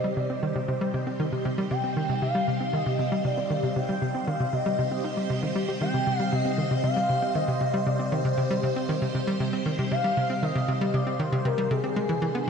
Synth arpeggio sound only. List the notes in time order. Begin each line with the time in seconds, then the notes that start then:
0.04 G3
0.17 C3
0.30 C4
0.43 D#3
0.56 C3
0.68 C3
0.81 G3
0.94 C3
1.07 C4
1.20 D#3
1.32 C3
1.45 C3
1.58 G3
1.71 C3
1.84 C4
1.97 D#3
2.09 C3
2.22 C3
2.35 G3
2.48 C3
2.60 C4
2.73 D#3
2.86 C3
2.99 C3
3.12 G3
3.25 C3
3.38 C4
3.50 D#3
3.63 C3
3.76 C3
3.89 G3
4.02 C3
4.15 C4
4.27 D#3
4.40 C3
4.53 C3
4.66 G3
4.79 C3
4.91 C4
5.04 D#4
5.17 G3
5.30 C3
5.43 D#3
5.56 G3
5.68 G4
5.81 D#3
5.94 C3
6.07 C3
6.20 G3
6.32 C3
6.45 C4
6.58 D#3
6.71 C3
6.84 C3
6.97 G3
7.09 C3
7.22 C4
7.35 D#3
7.48 C3
7.61 C3
7.74 G3
7.87 C3
7.99 C4
8.12 D#3
8.25 C3
8.38 C3
8.51 G3
8.63 C3
8.76 C4
8.89 D#3
9.02 C3
9.15 C3
9.27 G3
9.40 C3
9.53 C4
9.66 D#3
9.79 C3
9.91 C3
10.04 G3
10.17 C3
10.30 C4
10.43 D#3
10.55 C3
10.68 C3
10.81 G3
10.94 C3
11.07 C4
11.19 D#3
11.32 C3
11.45 C3
11.58 G3
11.71 C3
11.84 C4
11.96 G#3
12.09 E3
12.22 E3
12.35 B3